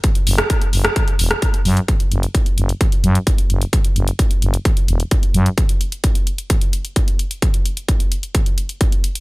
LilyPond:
<<
  \new Staff \with { instrumentName = "FM bass" } { \clef bass \time 4/4 \key e \dorian \tempo 4 = 130 r8 fis,,8 r8 fis,,8 r8 e,,8 r8 fis,8 | r8 fis,,8 r8 fis,,8 r8 fis,8 r8 fis,,8 | r8 fis,,8 r8 fis,,8 r8 e,,8 r8 fis,8 | r1 |
r1 | }
  \new DrumStaff \with { instrumentName = "Drums" } \drummode { \time 4/4 <hh bd>16 hh16 hho16 <hh ss>16 <hh bd>16 hh16 hho16 <hh ss>16 <hh bd>16 hh16 hho16 <hh ss>16 <hh bd>16 hh16 hho16 hh16 | <hh bd>16 hh16 hh16 hh16 <hh bd>16 hh16 hh16 hh16 <hh bd>16 hh16 hh16 hh16 <hh bd>16 hh16 hh16 hh16 | <hh bd>16 hh16 hh16 hh16 <hh bd>16 hh16 hh16 hh16 <hh bd>16 hh16 hh16 hh16 <hh bd>16 hh16 hh16 hh16 | <hh bd>16 hh16 hh16 hh16 <hh bd>16 hh16 hh16 hh16 <hh bd>16 hh16 hh16 hh16 <hh bd>16 hh16 hh16 hh16 |
<hh bd>16 hh16 hh16 hh16 <hh bd>16 hh16 hh16 hh16 <hh bd>16 hh16 hh16 hh16 <hh bd>16 hh16 hh16 hh16 | }
>>